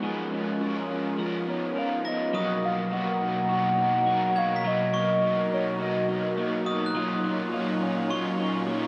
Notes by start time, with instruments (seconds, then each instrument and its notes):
Already playing: glockenspiel F#6
0.02 overdriven electric guitar A#2 F3 G#3 C#4 F4 A#4, clean electric guitar F3 G#4, analog synth pad G#3 C#4 F4 A#4
0.32 clean electric guitar C#4
0.59 overdriven electric guitar G#3 C#4 F4, clean electric guitar F#4
0.64 overdriven electric guitar A#4
0.76 clean electric guitar G#4
0.90 clean electric guitar C#4
1.17 clean electric guitar F3, analog synth pad F3 B3 C#4 D#4, overdriven electric guitar G#3 B3 F4
1.22 overdriven electric guitar A#4
1.47 clean electric guitar B3, soft synth lead C#5
1.75 overdriven electric guitar G#3 B3, clean electric guitar A#4, soft synth lead F5
1.79 overdriven electric guitar F4 A#4
2.05 clean electric guitar B3, soft synth lead D#5, glockenspiel A#6
2.33 overdriven electric guitar B2 F#3 A#3 D#4 F#4, analog synth pad B2 F#3 D#4 A#4, clean electric guitar F#3 F#4, glockenspiel D#6
2.62 clean electric guitar A#3, soft synth lead F5
2.90 overdriven electric guitar F#3 A#3 D#4, clean electric guitar F#4, soft synth lead F#5
2.96 overdriven electric guitar F#4
3.20 clean electric guitar D#4
3.47 overdriven electric guitar F#3 A#3, clean electric guitar F#4, soft synth lead F#5
3.51 overdriven electric guitar D#4 F#4
3.78 clean electric guitar D#4
4.05 overdriven electric guitar F#3 A#3 D#4, clean electric guitar A#3
4.11 overdriven electric guitar F#4
4.36 clean electric guitar F#4, soft synth lead F5, glockenspiel G#6
4.56 glockenspiel B6
4.63 overdriven electric guitar B2 F#3 A#3 D#4 F#4, clean electric guitar F#3 F#4, soft synth lead D#5
4.93 clean electric guitar A#3, glockenspiel C#6
5.21 overdriven electric guitar F#3 A#3, clean electric guitar F#4
5.25 overdriven electric guitar D#4 F#4
5.51 clean electric guitar D#4, soft synth lead C#5
5.78 overdriven electric guitar F#3 A#3, clean electric guitar F#4
5.83 overdriven electric guitar D#4 F#4
6.09 clean electric guitar D#4
6.36 overdriven electric guitar F#3 A#3 D#4, clean electric guitar A#3
6.42 overdriven electric guitar F#4
6.66 clean electric guitar F#4, glockenspiel D#6
6.86 glockenspiel F#6
6.94 overdriven electric guitar A#2 F#3 A#3 C#4, analog synth pad A#2 F#3 F4 C#5, clean electric guitar F#3 F4
6.98 overdriven electric guitar F4
7.24 clean electric guitar A#3
7.52 overdriven electric guitar F#3 A#3 C#4, clean electric guitar F4
7.57 overdriven electric guitar F4
7.81 clean electric guitar C#4
8.09 overdriven electric guitar F#3 A#3, clean electric guitar F4, glockenspiel C#6
8.13 overdriven electric guitar C#4 F4
8.39 clean electric guitar C#4
8.67 overdriven electric guitar F#3 A#3 C#4, clean electric guitar A#3
8.72 overdriven electric guitar F4